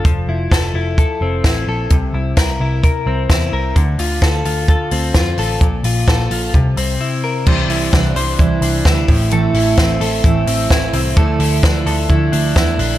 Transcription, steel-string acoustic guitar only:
X:1
M:4/4
L:1/8
Q:1/4=130
K:Cmix
V:1 name="Steel-string acoustic guitar"
z8 | z8 | z8 | z8 |
[C,E,G,DE]2 [E,G,DE] [G,DE] [C,E,G,DE]2 [E,G,DE] [A,CE] | [A,,E,A,CE]2 [E,A,E] [A,CE] [A,,E,A,CE]2 [E,A,CE] [A,CE] | [D,F,A,E]2 [D,F,A,E] [F,A,E] [D,F,A,E]2 [D,F,A,E]2 |]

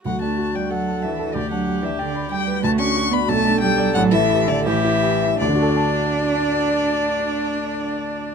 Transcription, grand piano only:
X:1
M:2/4
L:1/16
Q:1/4=88
K:D
V:1 name="Grand piano"
D,, D F d f a f A | D,, D G d g b g B | D,, D F d B,,, D G d | A,,, E G e A,,, E G e |
[D,,D,FAda]8- | [D,,D,FAda]8 |]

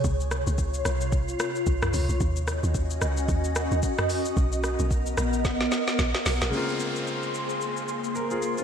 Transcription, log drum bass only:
X:1
M:4/4
L:1/16
Q:"Swing 16ths" 1/4=111
K:Bbm
V:1 name="Log drum bass" clef=bass
D,,3 D,,3 C,,4 z2 C,,2 D,, C,, | E,,3 E,,3 D,,2 E,,3 E,, z4 | =B,,,3 B,,,3 ^A,,,4 z2 A,,, z B,,, A,,, | z16 |]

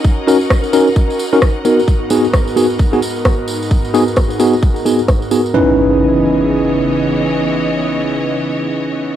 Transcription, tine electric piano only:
X:1
M:4/4
L:1/16
Q:"Swing 16ths" 1/4=131
K:C#dor
V:1 name="Tine electric piano"
z2 [CDFA] z3 [CDFA] z4 [CDFA] z2 [B,DFA] z | z2 [B,DFG] z3 [B,DFG] z2 [B,DFG] z6 | z2 [B,DFG] z3 [B,DFG] z3 [B,DFG] z3 [B,DFG] z | [CDEB]16- |
[CDEB]16 |]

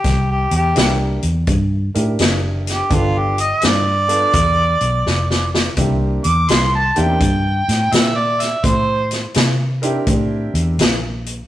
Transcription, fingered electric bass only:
X:1
M:4/4
L:1/8
Q:"Swing" 1/4=84
K:Cmix
V:1 name="Fingered electric bass" clef=bass
C,, E,, C,, E,, G,, A,, ^F,,,2 | G,,,2 G,,2 E,, =B,,, F,,,2 | C,, E,, C,, E,, G,, A,, B,,2 | A,,2 C,2 A,, E,, B,,,2 |]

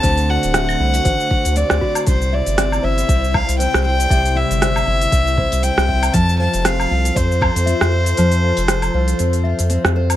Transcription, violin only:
X:1
M:4/4
L:1/8
Q:"Swing 16ths" 1/4=118
K:C
V:1 name="Violin"
a ^f4- f d2 | c d2 e2 f g g- | g e4- e g2 | a a f2 c4- |
c6 z2 |]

